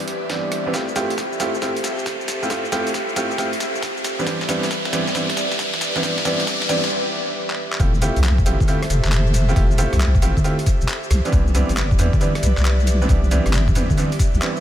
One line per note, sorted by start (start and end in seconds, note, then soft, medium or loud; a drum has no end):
0.00 7.76 G4 medium
0.00 0.70 B4 medium
0.00 0.70 D5 medium
0.00 7.76 E5 medium
0.00 closed hi-hat medium
0.00 riser medium
0.08 closed hi-hat loud
0.22 0.28 C2 loud
0.30 0.63 E3 medium
0.30 0.63 G3 medium
0.30 0.63 B3 medium
0.30 0.63 C4 medium
0.30 0.63 D4 medium
0.30 kick loud
0.30 snare medium
0.30 closed hi-hat medium
0.52 0.62 G1 medium
0.52 cross-stick medium
0.52 closed hi-hat loud
0.66 0.72 E3 medium
0.66 0.72 G3 medium
0.66 0.72 B3 medium
0.66 0.72 C4 medium
0.66 0.72 D4 medium
0.74 0.83 A3 medium
0.74 0.83 C4 medium
0.74 0.83 E4 medium
0.74 0.83 F4 medium
0.74 0.83 G4 medium
0.74 4.01 A4 medium
0.74 4.01 C5 medium
0.74 kick loud
0.74 snare medium
0.74 closed hi-hat medium
0.74 shaker soft
0.88 shaker soft
0.96 1.11 A3 loud
0.96 1.11 C4 medium
0.96 1.11 E4 medium
0.96 1.11 F4 medium
0.96 1.11 G4 loud
0.96 snare medium
0.96 closed hi-hat loud
0.96 shaker medium
1.10 1.37 C2 medium
1.10 closed hi-hat medium
1.10 shaker soft
1.18 kick loud
1.18 snare medium
1.18 closed hi-hat medium
1.18 shaker soft
1.32 shaker soft
1.40 1.51 A1 medium
1.40 1.49 A3 medium
1.40 1.49 C4 medium
1.40 1.49 E4 medium
1.40 1.49 F4 medium
1.40 1.49 G4 loud
1.40 snare medium
1.40 closed hi-hat loud
1.40 shaker medium
1.54 high conga medium
1.54 shaker soft
1.62 1.71 A3 medium
1.62 1.71 C4 medium
1.62 1.71 E4 medium
1.62 1.71 F4 medium
1.62 1.71 G4 loud
1.62 kick loud
1.62 snare medium
1.62 closed hi-hat medium
1.62 shaker soft
1.76 closed hi-hat medium
1.76 shaker soft
1.84 1.95 F1 medium
1.84 snare medium
1.84 closed hi-hat loud
1.84 shaker medium
1.99 2.47 F1 medium
1.99 shaker soft
2.06 kick loud
2.06 snare medium
2.06 closed hi-hat medium
2.06 shaker soft
2.21 shaker soft
2.28 snare medium
2.28 closed hi-hat loud
2.28 shaker medium
2.43 2.47 A3 medium
2.43 2.47 C4 medium
2.43 2.47 E4 medium
2.43 2.47 F4 medium
2.43 2.47 G4 medium
2.43 shaker soft
2.50 2.59 A3 medium
2.50 2.60 C4 medium
2.50 2.60 E4 medium
2.50 2.60 F4 medium
2.50 2.60 G4 medium
2.50 kick loud
2.50 snare medium
2.50 closed hi-hat medium
2.50 shaker soft
2.65 shaker soft
2.72 2.87 A3 loud
2.72 2.87 C4 medium
2.72 2.87 E4 medium
2.72 2.87 F4 medium
2.72 2.87 G4 loud
2.72 snare medium
2.72 closed hi-hat loud
2.72 shaker medium
2.87 3.13 C2 medium
2.87 closed hi-hat medium
2.87 shaker soft
2.94 kick loud
2.94 snare medium
2.94 closed hi-hat medium
2.94 shaker soft
3.09 shaker soft
3.16 3.27 A1 medium
3.16 3.26 A3 medium
3.16 3.26 C4 medium
3.16 3.26 E4 medium
3.16 3.26 F4 medium
3.16 3.26 G4 loud
3.16 snare medium
3.16 closed hi-hat loud
3.16 shaker medium
3.31 high conga medium
3.31 shaker soft
3.38 3.48 A3 medium
3.38 3.48 C4 medium
3.38 3.48 E4 medium
3.38 3.48 F4 medium
3.38 3.48 G4 loud
3.38 kick loud
3.38 snare medium
3.38 closed hi-hat medium
3.38 shaker soft
3.53 closed hi-hat medium
3.53 shaker soft
3.60 snare medium
3.60 closed hi-hat loud
3.60 shaker medium
3.75 shaker soft
3.82 kick loud
3.82 snare medium
3.82 closed hi-hat medium
3.82 shaker soft
3.97 shaker soft
4.04 7.76 B4 medium
4.04 7.76 D5 medium
4.04 snare medium
4.04 closed hi-hat loud
4.04 shaker medium
4.19 4.24 E3 medium
4.19 4.24 G3 medium
4.19 4.24 B3 medium
4.19 4.24 C4 medium
4.19 4.24 D4 medium
4.19 shaker soft
4.26 4.36 E3 medium
4.26 4.36 G3 medium
4.26 4.36 B3 medium
4.26 4.36 C4 medium
4.26 4.36 D4 medium
4.26 kick loud
4.26 snare medium
4.26 closed hi-hat medium
4.26 shaker soft
4.41 snare medium
4.41 shaker soft
4.48 4.63 E3 loud
4.48 4.63 G3 medium
4.48 4.63 B3 medium
4.48 4.63 C4 medium
4.48 4.63 D4 loud
4.48 snare medium
4.48 closed hi-hat loud
4.48 shaker medium
4.63 snare medium
4.63 closed hi-hat medium
4.63 shaker soft
4.71 kick loud
4.71 snare medium
4.71 closed hi-hat medium
4.71 shaker soft
4.85 snare medium
4.85 shaker soft
4.93 5.03 E2 medium
4.93 5.02 E3 medium
4.93 5.02 G3 medium
4.93 5.02 B3 medium
4.93 5.02 C4 medium
4.93 5.02 D4 loud
4.93 snare loud
4.93 closed hi-hat loud
4.93 shaker medium
5.07 snare medium
5.07 high conga medium
5.07 shaker soft
5.15 5.24 E3 medium
5.15 5.24 G3 medium
5.15 5.24 B3 medium
5.15 5.24 C4 medium
5.15 5.24 D4 loud
5.15 kick loud
5.15 snare loud
5.15 closed hi-hat medium
5.15 shaker soft
5.30 snare medium
5.30 closed hi-hat medium
5.30 shaker soft
5.37 5.48 C2 medium
5.37 snare loud
5.37 closed hi-hat loud
5.37 shaker medium
5.52 6.00 C2 medium
5.52 snare medium
5.52 shaker soft
5.59 kick loud
5.59 snare loud
5.59 closed hi-hat medium
5.59 shaker soft
5.74 snare medium
5.74 shaker soft
5.81 snare loud
5.81 closed hi-hat loud
5.81 shaker medium
5.96 6.00 E3 medium
5.96 6.00 G3 medium
5.96 6.00 B3 medium
5.96 6.00 C4 medium
5.96 6.00 D4 medium
5.96 snare medium
5.96 shaker soft
6.03 6.33 C2 loud
6.03 6.12 G3 medium
6.03 6.12 B3 medium
6.03 6.12 C4 medium
6.03 6.12 D4 medium
6.03 kick loud
6.03 snare loud
6.03 closed hi-hat medium
6.03 shaker soft
6.18 snare medium
6.18 shaker soft
6.25 6.40 E3 loud
6.25 6.40 G3 medium
6.25 6.40 B3 medium
6.25 6.40 C4 medium
6.25 6.40 D4 loud
6.25 snare loud
6.25 closed hi-hat loud
6.25 shaker medium
6.40 6.66 G1 loud
6.40 snare medium
6.40 closed hi-hat medium
6.40 shaker soft
6.47 kick loud
6.47 snare loud
6.47 closed hi-hat medium
6.47 shaker soft
6.62 snare loud
6.62 shaker soft
6.69 6.79 E3 medium
6.69 6.79 G3 medium
6.69 6.79 B3 medium
6.69 6.79 C4 medium
6.69 6.79 D4 loud
6.69 snare loud
6.69 closed hi-hat loud
6.69 shaker medium
6.84 snare medium
6.84 high conga medium
6.84 shaker soft
7.50 clap medium
7.72 clap loud
7.79 8.10 F1 loud
7.79 7.89 A3 medium
7.79 7.89 C4 medium
7.79 7.89 E4 medium
7.79 7.89 F4 medium
7.79 14.60 G4 medium
7.79 7.89 G4 medium
7.79 11.07 A4 medium
7.79 11.07 C5 medium
7.79 11.07 E5 medium
7.79 kick loud
7.79 closed hi-hat medium
7.79 shaker soft
7.94 shaker soft
8.02 8.17 A3 loud
8.02 8.17 C4 medium
8.02 8.17 E4 medium
8.02 8.17 F4 medium
8.02 8.17 G4 loud
8.02 closed hi-hat loud
8.02 shaker medium
8.16 8.43 C2 loud
8.16 closed hi-hat medium
8.16 shaker soft
8.24 clap loud
8.24 closed hi-hat medium
8.24 shaker soft
8.38 kick loud
8.38 shaker soft
8.46 8.56 A1 medium
8.46 8.55 A3 medium
8.46 8.55 C4 medium
8.46 8.55 E4 medium
8.46 8.55 F4 medium
8.46 8.55 G4 loud
8.46 closed hi-hat loud
8.46 shaker medium
8.60 kick loud
8.60 high conga medium
8.60 shaker soft
8.68 8.77 A3 medium
8.68 8.77 C4 medium
8.68 8.77 E4 medium
8.68 8.77 F4 medium
8.68 8.77 G4 loud
8.68 closed hi-hat medium
8.68 shaker soft
8.83 cross-stick medium
8.83 closed hi-hat medium
8.83 shaker soft
8.90 9.01 F1 medium
8.90 closed hi-hat loud
8.90 shaker medium
9.05 9.53 F1 medium
9.05 clap medium
9.05 shaker soft
9.12 clap loud
9.12 closed hi-hat medium
9.12 shaker soft
9.27 shaker soft
9.34 closed hi-hat loud
9.34 shaker medium
9.49 9.53 A3 medium
9.49 9.53 C4 medium
9.49 9.53 E4 medium
9.49 9.53 F4 medium
9.49 9.53 G4 medium
9.49 shaker soft
9.56 9.86 F1 loud
9.56 9.65 A3 medium
9.56 9.65 C4 medium
9.56 9.65 E4 medium
9.56 9.65 F4 medium
9.56 9.65 G4 medium
9.56 kick loud
9.56 closed hi-hat medium
9.56 shaker soft
9.71 shaker soft
9.78 9.93 A3 loud
9.78 9.93 C4 medium
9.78 9.93 E4 medium
9.78 9.93 F4 medium
9.78 9.93 G4 loud
9.78 closed hi-hat loud
9.78 shaker medium
9.93 10.19 C2 loud
9.93 cross-stick medium
9.93 closed hi-hat medium
9.93 shaker soft
10.00 clap loud
10.00 closed hi-hat medium
10.00 shaker soft
10.15 kick loud
10.15 shaker soft
10.22 10.33 A1 medium
10.22 10.32 A3 medium
10.22 10.32 C4 medium
10.22 10.32 E4 medium
10.22 10.32 F4 medium
10.22 10.32 G4 loud
10.22 closed hi-hat loud
10.22 shaker medium
10.37 kick medium
10.37 high conga medium
10.37 shaker soft
10.44 10.54 A3 medium
10.44 10.54 C4 medium
10.44 10.54 E4 medium
10.44 10.54 F4 medium
10.44 10.54 G4 loud
10.44 closed hi-hat medium
10.44 shaker soft
10.59 closed hi-hat medium
10.59 shaker soft
10.66 kick loud
10.66 closed hi-hat loud
10.66 shaker medium
10.81 10.86 F1 loud
10.81 shaker soft
10.89 clap loud
10.89 closed hi-hat medium
10.89 shaker soft
11.03 shaker soft
11.10 11.21 C2 medium
11.10 14.60 B4 medium
11.10 14.60 D5 medium
11.10 14.60 E5 loud
11.10 cross-stick medium
11.10 closed hi-hat loud
11.10 shaker medium
11.25 11.30 E3 medium
11.25 11.30 G3 medium
11.25 11.30 B3 medium
11.25 11.30 C4 medium
11.25 11.30 D4 medium
11.25 closed hi-hat medium
11.25 shaker soft
11.33 11.63 C2 loud
11.33 11.42 E3 medium
11.33 11.42 G3 medium
11.33 11.42 B3 medium
11.33 11.42 C4 medium
11.33 11.42 D4 medium
11.33 kick loud
11.33 closed hi-hat medium
11.33 shaker soft
11.47 shaker soft
11.55 11.69 E3 loud
11.55 11.69 G3 medium
11.55 11.69 B3 medium
11.55 11.69 C4 medium
11.55 11.69 D4 loud
11.55 closed hi-hat loud
11.55 shaker medium
11.69 11.96 G1 loud
11.69 closed hi-hat medium
11.69 shaker soft
11.77 clap loud
11.77 closed hi-hat medium
11.77 shaker soft
11.91 kick loud
11.91 shaker soft
11.99 12.09 E2 medium
11.99 12.08 E3 loud
11.99 12.08 G3 medium
11.99 12.08 B3 medium
11.99 12.08 C4 medium
11.99 12.08 D4 loud
11.99 closed hi-hat loud
11.99 shaker medium
12.13 kick loud
12.13 high conga medium
12.13 shaker soft
12.21 12.30 E3 medium
12.21 12.30 G3 medium
12.21 12.30 B3 medium
12.21 12.30 C4 medium
12.21 12.30 D4 loud
12.21 closed hi-hat medium
12.21 shaker soft
12.35 cross-stick medium
12.35 closed hi-hat medium
12.35 shaker soft
12.43 12.53 C2 medium
12.43 closed hi-hat loud
12.43 shaker medium
12.57 13.06 C2 medium
12.57 clap medium
12.57 shaker soft
12.65 clap loud
12.65 closed hi-hat medium
12.65 shaker soft
12.80 shaker soft
12.87 closed hi-hat loud
12.87 shaker medium
13.02 13.06 E3 medium
13.02 13.06 G3 medium
13.02 13.06 B3 medium
13.02 13.06 C4 medium
13.02 13.06 D4 medium
13.02 shaker soft
13.09 13.39 C2 medium
13.09 13.18 E3 medium
13.09 13.18 G3 medium
13.09 13.18 B3 medium
13.09 13.18 C4 medium
13.09 13.18 D4 medium
13.09 kick loud
13.09 closed hi-hat medium
13.09 shaker soft
13.24 shaker soft
13.31 13.46 E3 loud
13.31 13.46 G3 medium
13.31 13.46 B3 medium
13.31 13.46 C4 medium
13.31 13.46 D4 loud
13.31 closed hi-hat loud
13.31 shaker medium
13.46 13.72 G1 loud
13.46 cross-stick medium
13.46 closed hi-hat medium
13.46 shaker soft
13.53 clap loud
13.53 closed hi-hat medium
13.53 shaker soft
13.68 kick loud
13.68 shaker soft
13.75 13.86 E2 medium
13.75 13.85 E3 medium
13.75 13.85 G3 medium
13.75 13.85 B3 medium
13.75 13.85 C4 medium
13.75 13.85 D4 loud
13.75 closed hi-hat loud
13.75 shaker medium
13.90 kick medium
13.90 high conga medium
13.90 shaker soft
13.97 14.07 E3 medium
13.97 14.07 G3 medium
13.97 14.07 B3 medium
13.97 14.07 C4 medium
13.97 14.07 D4 loud
13.97 closed hi-hat medium
13.97 shaker soft
14.12 closed hi-hat medium
14.12 shaker soft
14.19 kick loud
14.19 closed hi-hat loud
14.19 shaker medium
14.34 14.39 C2 loud
14.34 shaker soft
14.42 14.60 E3 medium
14.42 14.60 G3 medium
14.42 14.60 B3 medium
14.42 14.60 C4 medium
14.42 14.60 D4 medium
14.42 clap loud
14.42 closed hi-hat medium
14.42 shaker soft
14.56 shaker soft